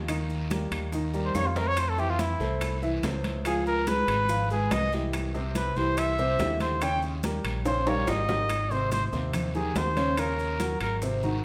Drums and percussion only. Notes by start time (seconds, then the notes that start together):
0.08 high bongo, high conga, high timbale, long guiro, claves, maracas
0.30 high bongo, high conga, maracas
0.51 high bongo, high conga, high timbale, short guiro, maracas
0.72 high bongo, high conga, high timbale, short guiro, claves, maracas
0.93 high bongo, high conga, long guiro, maracas
1.14 high bongo, high conga, maracas
1.35 high bongo, low bongo, high conga, high timbale, short guiro, claves, maracas
1.56 high conga, low timbale, short guiro, maracas
1.77 high bongo, high conga, high timbale, long guiro, claves, maracas
1.98 high bongo, high conga, maracas
2.19 high bongo, high conga, high timbale, short guiro, maracas
2.40 high bongo, high conga, short guiro, maracas
2.61 high bongo, high conga, high timbale, long guiro, claves, maracas
2.82 high bongo, high conga, maracas
3.03 high bongo, low bongo, high conga, high timbale, low timbale, short guiro, maracas
3.24 high conga, high timbale, short guiro, maracas
3.45 high bongo, high conga, high timbale, long guiro, claves, maracas
3.66 high bongo, high conga, maracas
3.87 high bongo, high conga, high timbale, short guiro, maracas
4.08 high bongo, high conga, high timbale, short guiro, claves, maracas
4.29 high bongo, high conga, long guiro, maracas
4.50 high bongo, high conga, maracas
4.71 high bongo, low bongo, high conga, high timbale, low timbale, short guiro, claves, maracas
4.92 high conga, short guiro, maracas
5.13 high bongo, high conga, high timbale, long guiro, claves, maracas
5.34 high bongo, high conga, maracas
5.55 high bongo, high conga, high timbale, short guiro, maracas
5.76 high bongo, high conga, short guiro, maracas
5.97 high bongo, high conga, high timbale, long guiro, claves, maracas
6.18 high bongo, high conga, maracas
6.39 high bongo, low bongo, high conga, high timbale, low timbale, short guiro, maracas
6.60 high conga, high timbale, short guiro, maracas
6.81 high bongo, high conga, high timbale, long guiro, claves, maracas
7.02 high bongo, high conga, maracas
7.23 high bongo, high conga, high timbale, short guiro, maracas
7.45 high conga, high timbale, short guiro, claves, maracas
7.65 high bongo, high conga, high timbale, long guiro, maracas
7.87 high bongo, high conga, high timbale, maracas
8.07 high bongo, high conga, low timbale, short guiro, claves, maracas
8.29 low bongo, high conga, low timbale, short guiro, maracas
8.49 high bongo, high conga, high timbale, long guiro, claves, maracas
8.71 high bongo, high conga, maracas
8.92 high bongo, high conga, high timbale, short guiro, maracas
9.12 high bongo, high conga, short guiro, maracas
9.33 high bongo, high conga, low conga, high timbale, long guiro, claves, maracas
9.55 high bongo, high conga, low conga, maracas
9.75 high bongo, low bongo, high conga, high timbale, low timbale, short guiro, maracas
9.97 high conga, high timbale, short guiro, maracas
10.17 high bongo, high conga, high timbale, long guiro, claves, maracas
10.39 high bongo, high conga, maracas
10.60 high bongo, high conga, high timbale, short guiro, maracas
10.81 high bongo, high conga, high timbale, short guiro, claves, maracas
11.02 high bongo, high conga, long guiro, maracas
11.23 high bongo, high conga, maracas